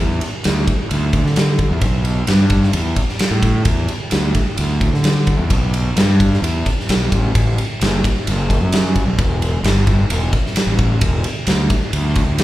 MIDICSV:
0, 0, Header, 1, 3, 480
1, 0, Start_track
1, 0, Key_signature, 1, "minor"
1, 0, Tempo, 459770
1, 1908, Time_signature, 4, 2, 24, 8
1, 12983, End_track
2, 0, Start_track
2, 0, Title_t, "Fingered electric bass"
2, 0, Program_c, 0, 33
2, 0, Note_on_c, 0, 40, 89
2, 191, Note_off_c, 0, 40, 0
2, 476, Note_on_c, 0, 38, 82
2, 678, Note_off_c, 0, 38, 0
2, 954, Note_on_c, 0, 38, 89
2, 1260, Note_off_c, 0, 38, 0
2, 1298, Note_on_c, 0, 50, 76
2, 1714, Note_off_c, 0, 50, 0
2, 1784, Note_on_c, 0, 40, 97
2, 1889, Note_off_c, 0, 40, 0
2, 1898, Note_on_c, 0, 35, 92
2, 2314, Note_off_c, 0, 35, 0
2, 2380, Note_on_c, 0, 43, 101
2, 2796, Note_off_c, 0, 43, 0
2, 2858, Note_on_c, 0, 40, 87
2, 3069, Note_off_c, 0, 40, 0
2, 3452, Note_on_c, 0, 45, 83
2, 3769, Note_off_c, 0, 45, 0
2, 3815, Note_on_c, 0, 40, 89
2, 4027, Note_off_c, 0, 40, 0
2, 4304, Note_on_c, 0, 38, 93
2, 4513, Note_off_c, 0, 38, 0
2, 4789, Note_on_c, 0, 38, 89
2, 5098, Note_off_c, 0, 38, 0
2, 5154, Note_on_c, 0, 50, 79
2, 5564, Note_off_c, 0, 50, 0
2, 5631, Note_on_c, 0, 40, 94
2, 5733, Note_off_c, 0, 40, 0
2, 5746, Note_on_c, 0, 35, 92
2, 6159, Note_off_c, 0, 35, 0
2, 6229, Note_on_c, 0, 43, 95
2, 6641, Note_off_c, 0, 43, 0
2, 6704, Note_on_c, 0, 40, 97
2, 6912, Note_off_c, 0, 40, 0
2, 7196, Note_on_c, 0, 35, 81
2, 7409, Note_off_c, 0, 35, 0
2, 7437, Note_on_c, 0, 33, 85
2, 7649, Note_off_c, 0, 33, 0
2, 7675, Note_on_c, 0, 33, 96
2, 7879, Note_off_c, 0, 33, 0
2, 8159, Note_on_c, 0, 30, 89
2, 8360, Note_off_c, 0, 30, 0
2, 8643, Note_on_c, 0, 30, 89
2, 8945, Note_off_c, 0, 30, 0
2, 8987, Note_on_c, 0, 42, 83
2, 9399, Note_off_c, 0, 42, 0
2, 9466, Note_on_c, 0, 35, 100
2, 9570, Note_off_c, 0, 35, 0
2, 9587, Note_on_c, 0, 28, 100
2, 9999, Note_off_c, 0, 28, 0
2, 10052, Note_on_c, 0, 31, 103
2, 10470, Note_off_c, 0, 31, 0
2, 10542, Note_on_c, 0, 28, 94
2, 10751, Note_off_c, 0, 28, 0
2, 11137, Note_on_c, 0, 33, 86
2, 11450, Note_off_c, 0, 33, 0
2, 11502, Note_on_c, 0, 28, 99
2, 11711, Note_off_c, 0, 28, 0
2, 11977, Note_on_c, 0, 38, 95
2, 12188, Note_off_c, 0, 38, 0
2, 12456, Note_on_c, 0, 38, 89
2, 12770, Note_off_c, 0, 38, 0
2, 12808, Note_on_c, 0, 38, 79
2, 12983, Note_off_c, 0, 38, 0
2, 12983, End_track
3, 0, Start_track
3, 0, Title_t, "Drums"
3, 222, Note_on_c, 9, 51, 70
3, 326, Note_off_c, 9, 51, 0
3, 461, Note_on_c, 9, 51, 83
3, 474, Note_on_c, 9, 38, 115
3, 565, Note_off_c, 9, 51, 0
3, 578, Note_off_c, 9, 38, 0
3, 705, Note_on_c, 9, 36, 86
3, 707, Note_on_c, 9, 51, 67
3, 810, Note_off_c, 9, 36, 0
3, 811, Note_off_c, 9, 51, 0
3, 947, Note_on_c, 9, 51, 86
3, 1051, Note_off_c, 9, 51, 0
3, 1181, Note_on_c, 9, 51, 67
3, 1182, Note_on_c, 9, 36, 83
3, 1285, Note_off_c, 9, 51, 0
3, 1286, Note_off_c, 9, 36, 0
3, 1316, Note_on_c, 9, 38, 31
3, 1420, Note_off_c, 9, 38, 0
3, 1421, Note_on_c, 9, 51, 88
3, 1434, Note_on_c, 9, 38, 116
3, 1526, Note_off_c, 9, 51, 0
3, 1538, Note_off_c, 9, 38, 0
3, 1657, Note_on_c, 9, 51, 66
3, 1659, Note_on_c, 9, 36, 78
3, 1761, Note_off_c, 9, 51, 0
3, 1763, Note_off_c, 9, 36, 0
3, 1894, Note_on_c, 9, 51, 91
3, 1897, Note_on_c, 9, 36, 100
3, 1999, Note_off_c, 9, 51, 0
3, 2001, Note_off_c, 9, 36, 0
3, 2138, Note_on_c, 9, 51, 67
3, 2242, Note_off_c, 9, 51, 0
3, 2372, Note_on_c, 9, 51, 93
3, 2385, Note_on_c, 9, 38, 104
3, 2477, Note_off_c, 9, 51, 0
3, 2489, Note_off_c, 9, 38, 0
3, 2608, Note_on_c, 9, 51, 70
3, 2614, Note_on_c, 9, 36, 86
3, 2712, Note_off_c, 9, 51, 0
3, 2718, Note_off_c, 9, 36, 0
3, 2745, Note_on_c, 9, 38, 31
3, 2850, Note_off_c, 9, 38, 0
3, 2853, Note_on_c, 9, 51, 100
3, 2957, Note_off_c, 9, 51, 0
3, 3094, Note_on_c, 9, 51, 77
3, 3096, Note_on_c, 9, 36, 83
3, 3198, Note_off_c, 9, 51, 0
3, 3200, Note_off_c, 9, 36, 0
3, 3227, Note_on_c, 9, 38, 33
3, 3332, Note_off_c, 9, 38, 0
3, 3334, Note_on_c, 9, 51, 101
3, 3347, Note_on_c, 9, 38, 104
3, 3438, Note_off_c, 9, 51, 0
3, 3451, Note_off_c, 9, 38, 0
3, 3576, Note_on_c, 9, 36, 82
3, 3578, Note_on_c, 9, 51, 73
3, 3681, Note_off_c, 9, 36, 0
3, 3682, Note_off_c, 9, 51, 0
3, 3811, Note_on_c, 9, 51, 101
3, 3816, Note_on_c, 9, 36, 109
3, 3916, Note_off_c, 9, 51, 0
3, 3920, Note_off_c, 9, 36, 0
3, 4056, Note_on_c, 9, 51, 66
3, 4160, Note_off_c, 9, 51, 0
3, 4291, Note_on_c, 9, 51, 90
3, 4303, Note_on_c, 9, 38, 110
3, 4395, Note_off_c, 9, 51, 0
3, 4408, Note_off_c, 9, 38, 0
3, 4538, Note_on_c, 9, 51, 73
3, 4540, Note_on_c, 9, 36, 87
3, 4642, Note_off_c, 9, 51, 0
3, 4644, Note_off_c, 9, 36, 0
3, 4777, Note_on_c, 9, 51, 90
3, 4882, Note_off_c, 9, 51, 0
3, 5023, Note_on_c, 9, 36, 87
3, 5023, Note_on_c, 9, 51, 62
3, 5127, Note_off_c, 9, 36, 0
3, 5127, Note_off_c, 9, 51, 0
3, 5156, Note_on_c, 9, 38, 33
3, 5260, Note_off_c, 9, 38, 0
3, 5261, Note_on_c, 9, 51, 89
3, 5273, Note_on_c, 9, 38, 109
3, 5365, Note_off_c, 9, 51, 0
3, 5377, Note_off_c, 9, 38, 0
3, 5500, Note_on_c, 9, 51, 63
3, 5506, Note_on_c, 9, 36, 85
3, 5604, Note_off_c, 9, 51, 0
3, 5610, Note_off_c, 9, 36, 0
3, 5744, Note_on_c, 9, 51, 92
3, 5748, Note_on_c, 9, 36, 104
3, 5849, Note_off_c, 9, 51, 0
3, 5853, Note_off_c, 9, 36, 0
3, 5989, Note_on_c, 9, 51, 71
3, 6094, Note_off_c, 9, 51, 0
3, 6229, Note_on_c, 9, 51, 90
3, 6242, Note_on_c, 9, 38, 110
3, 6334, Note_off_c, 9, 51, 0
3, 6346, Note_off_c, 9, 38, 0
3, 6474, Note_on_c, 9, 36, 89
3, 6477, Note_on_c, 9, 51, 74
3, 6578, Note_off_c, 9, 36, 0
3, 6582, Note_off_c, 9, 51, 0
3, 6614, Note_on_c, 9, 38, 30
3, 6719, Note_off_c, 9, 38, 0
3, 6722, Note_on_c, 9, 51, 96
3, 6826, Note_off_c, 9, 51, 0
3, 6954, Note_on_c, 9, 51, 72
3, 6955, Note_on_c, 9, 36, 83
3, 7058, Note_off_c, 9, 51, 0
3, 7060, Note_off_c, 9, 36, 0
3, 7094, Note_on_c, 9, 38, 32
3, 7194, Note_on_c, 9, 51, 102
3, 7198, Note_off_c, 9, 38, 0
3, 7206, Note_on_c, 9, 38, 116
3, 7298, Note_off_c, 9, 51, 0
3, 7311, Note_off_c, 9, 38, 0
3, 7434, Note_on_c, 9, 36, 83
3, 7435, Note_on_c, 9, 51, 73
3, 7539, Note_off_c, 9, 36, 0
3, 7539, Note_off_c, 9, 51, 0
3, 7675, Note_on_c, 9, 36, 109
3, 7675, Note_on_c, 9, 51, 95
3, 7779, Note_off_c, 9, 51, 0
3, 7780, Note_off_c, 9, 36, 0
3, 7916, Note_on_c, 9, 51, 73
3, 8021, Note_off_c, 9, 51, 0
3, 8158, Note_on_c, 9, 51, 98
3, 8170, Note_on_c, 9, 38, 115
3, 8262, Note_off_c, 9, 51, 0
3, 8275, Note_off_c, 9, 38, 0
3, 8397, Note_on_c, 9, 36, 86
3, 8404, Note_on_c, 9, 51, 79
3, 8502, Note_off_c, 9, 36, 0
3, 8508, Note_off_c, 9, 51, 0
3, 8636, Note_on_c, 9, 51, 90
3, 8741, Note_off_c, 9, 51, 0
3, 8874, Note_on_c, 9, 36, 86
3, 8879, Note_on_c, 9, 51, 63
3, 8978, Note_off_c, 9, 36, 0
3, 8984, Note_off_c, 9, 51, 0
3, 9108, Note_on_c, 9, 51, 98
3, 9121, Note_on_c, 9, 38, 111
3, 9213, Note_off_c, 9, 51, 0
3, 9225, Note_off_c, 9, 38, 0
3, 9350, Note_on_c, 9, 51, 69
3, 9351, Note_on_c, 9, 36, 79
3, 9454, Note_off_c, 9, 51, 0
3, 9456, Note_off_c, 9, 36, 0
3, 9590, Note_on_c, 9, 51, 88
3, 9591, Note_on_c, 9, 36, 113
3, 9694, Note_off_c, 9, 51, 0
3, 9695, Note_off_c, 9, 36, 0
3, 9836, Note_on_c, 9, 51, 68
3, 9940, Note_off_c, 9, 51, 0
3, 10068, Note_on_c, 9, 51, 83
3, 10081, Note_on_c, 9, 38, 107
3, 10172, Note_off_c, 9, 51, 0
3, 10185, Note_off_c, 9, 38, 0
3, 10303, Note_on_c, 9, 51, 71
3, 10307, Note_on_c, 9, 36, 86
3, 10408, Note_off_c, 9, 51, 0
3, 10412, Note_off_c, 9, 36, 0
3, 10546, Note_on_c, 9, 51, 103
3, 10650, Note_off_c, 9, 51, 0
3, 10783, Note_on_c, 9, 36, 84
3, 10783, Note_on_c, 9, 51, 65
3, 10887, Note_off_c, 9, 51, 0
3, 10888, Note_off_c, 9, 36, 0
3, 10923, Note_on_c, 9, 38, 34
3, 11023, Note_on_c, 9, 51, 102
3, 11027, Note_off_c, 9, 38, 0
3, 11035, Note_on_c, 9, 38, 110
3, 11127, Note_off_c, 9, 51, 0
3, 11140, Note_off_c, 9, 38, 0
3, 11261, Note_on_c, 9, 51, 67
3, 11262, Note_on_c, 9, 36, 81
3, 11365, Note_off_c, 9, 51, 0
3, 11367, Note_off_c, 9, 36, 0
3, 11497, Note_on_c, 9, 51, 101
3, 11501, Note_on_c, 9, 36, 115
3, 11601, Note_off_c, 9, 51, 0
3, 11606, Note_off_c, 9, 36, 0
3, 11736, Note_on_c, 9, 51, 78
3, 11840, Note_off_c, 9, 51, 0
3, 11972, Note_on_c, 9, 51, 101
3, 11984, Note_on_c, 9, 38, 111
3, 12076, Note_off_c, 9, 51, 0
3, 12089, Note_off_c, 9, 38, 0
3, 12214, Note_on_c, 9, 51, 81
3, 12217, Note_on_c, 9, 36, 90
3, 12318, Note_off_c, 9, 51, 0
3, 12321, Note_off_c, 9, 36, 0
3, 12455, Note_on_c, 9, 51, 95
3, 12559, Note_off_c, 9, 51, 0
3, 12690, Note_on_c, 9, 51, 74
3, 12697, Note_on_c, 9, 36, 92
3, 12794, Note_off_c, 9, 51, 0
3, 12801, Note_off_c, 9, 36, 0
3, 12930, Note_on_c, 9, 51, 101
3, 12942, Note_on_c, 9, 38, 109
3, 12983, Note_off_c, 9, 38, 0
3, 12983, Note_off_c, 9, 51, 0
3, 12983, End_track
0, 0, End_of_file